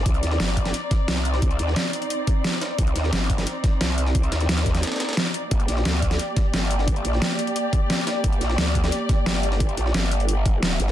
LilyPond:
<<
  \new Staff \with { instrumentName = "String section" } { \time 4/4 \key g \minor \tempo 4 = 176 <c' ees' d''>1~ | <c' ees' d''>1~ | <c' ees' d''>1~ | <c' ees' d''>1 |
<bes g' d''>1~ | <bes g' d''>1~ | <bes g' d''>1~ | <bes g' d''>1 | }
  \new Staff \with { instrumentName = "Wobble bass" } { \clef bass \time 4/4 \key g \minor c,8 ees,8 g,,4 r4 c,4~ | c,8 ees,8 r2. | c,8 ees,8 g,,4 r4 c,4~ | c,8 ees,8 ees,4 r2 |
g,,8 bes,,8 d,4 r4 g,,4~ | g,,8 bes,,8 r2. | g,,8 bes,,8 d,4 r4 g,,4~ | g,,8 bes,,8 g,,2~ g,,8 g,,8 | }
  \new DrumStaff \with { instrumentName = "Drums" } \drummode { \time 4/4 <hh bd>16 hh16 <hh sn>16 sn16 <hh sn>8 <hh bd>16 <hh sn>16 hh8 <hh bd sn>8 <hh sn>16 sn16 hh16 sn16 | <hh bd>16 hh16 hh16 sn16 <hh sn>8 hh16 hh16 hh8 <hh bd>8 <hh sn>16 sn16 <hh sn>8 | <hh bd>16 hh16 <hh sn>16 sn16 <hh sn>8 <hh bd>16 <hh sn>16 hh8 <hh bd sn>8 <hh sn>16 sn16 hh16 sn16 | <hh bd>16 hh16 <hh sn>16 <hh sn>16 <hh sn>16 <hh sn>16 <hh bd sn>16 <hh sn>16 <hh sn>32 <hh sn>32 <hh sn>32 <hh sn>32 <hh sn>16 <hh sn>32 <hh sn>32 <hh sn>16 sn16 hh8 |
<hh bd>16 hh16 <hh sn>16 sn16 <hh sn>8 <hh bd>16 <hh sn>16 hh8 <hh bd sn>8 <hh sn>16 sn16 hh16 sn16 | <hh bd>16 hh16 hh16 sn16 <hh sn>8 hh16 hh16 hh8 <hh bd>8 <hh sn>16 sn16 <hh sn>8 | <hh bd>16 hh16 <hh sn>16 sn16 <hh sn>8 <hh bd>16 <hh sn>16 hh8 <hh bd sn>8 <hh sn>16 sn16 hh16 sn16 | <hh bd>16 hh16 hh16 sn16 <hh sn>8 hh16 hh16 hh8 <hh bd>8 <hh sn>16 sn16 hh16 sn16 | }
>>